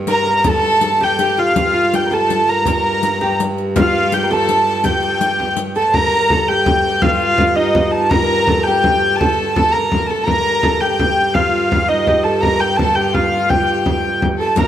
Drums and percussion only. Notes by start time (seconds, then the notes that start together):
0.07 riq
0.26 riq
0.44 riq, frame drum
0.81 riq
1.00 riq, frame drum
1.19 riq
1.37 riq
1.56 riq, frame drum
1.93 riq, frame drum
2.11 riq, frame drum
2.30 riq, frame drum
2.48 riq
2.65 riq, frame drum
3.03 riq, frame drum
3.21 riq, frame drum
3.39 riq, frame drum
3.58 riq
3.76 riq, frame drum
4.12 riq, frame drum
4.31 riq, frame drum
4.49 riq, frame drum
4.67 riq
4.84 riq, frame drum
5.03 riq
5.21 riq
5.40 frame drum
5.57 riq
5.75 riq, frame drum
5.94 frame drum
6.30 frame drum
6.66 frame drum
7.02 frame drum
7.38 frame drum
7.75 frame drum
8.11 frame drum
8.47 frame drum
8.84 frame drum
9.21 frame drum
9.56 frame drum
9.73 frame drum
9.92 frame drum
10.28 frame drum
10.63 frame drum
10.99 frame drum
11.35 frame drum
11.72 frame drum
12.07 frame drum
12.43 frame drum
12.79 frame drum
13.14 frame drum
13.50 frame drum
13.86 frame drum
14.04 frame drum
14.22 frame drum
14.56 riq, frame drum